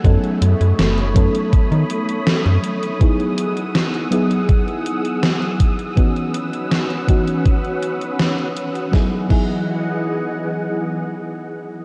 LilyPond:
<<
  \new Staff \with { instrumentName = "String machine" } { \time 4/4 \key e \major \tempo 4 = 81 << { <b'' dis'''>1 | e'''1~ | e'''1 | <e gis' dis'' fis''>1 | } \\ { <a cis''>1 | <gis' fis''>1 | <cis' b' fis''>1 | r1 | } >> }
  \new Staff \with { instrumentName = "FM electric piano" } { \time 4/4 \key e \major <fis b cis' dis' a'>4. <fis b cis' dis' a'>2~ <fis b cis' dis' a'>8 | <fis b dis' e' gis'>4. <fis b dis' e' gis'>2~ <fis b dis' e' gis'>8 | <e b cis' dis' fis'>4. <e b cis' dis' fis'>2~ <e b cis' dis' fis'>8 | <fis b dis' e' gis'>8 <fis b dis' e' gis'>2.~ <fis b dis' e' gis'>8 | }
  \new Staff \with { instrumentName = "FM bass" } { \clef bass \time 4/4 \key e \major fis,16 r16 fis,16 fis,16 fis,,8 fis,16 r8 dis16 r8. fis,16 r8 | r1 | r1 | r1 | }
  \new DrumStaff \with { instrumentName = "Drums" } \drummode { \time 4/4 <hh bd>16 hh16 hh16 hh16 <hh sn>16 hh16 <hh bd>16 hh16 <hh bd>16 hh16 hh16 hh16 <hh sn>16 hh16 hh16 hh16 | <hh bd>16 hh16 hh16 hh16 <hh sn>16 hh16 hh16 hh16 <hh bd>16 hh16 hh16 hh16 <hh sn>16 hh16 <hh bd>16 hh16 | <hh bd>16 hh16 hh16 hh16 <hh sn>16 hh16 <hh bd>16 hh16 <hh bd>16 hh16 hh16 hh16 <hh sn>16 hh16 hh16 hh16 | <bd sn>8 <cymc bd>8 r4 r4 r4 | }
>>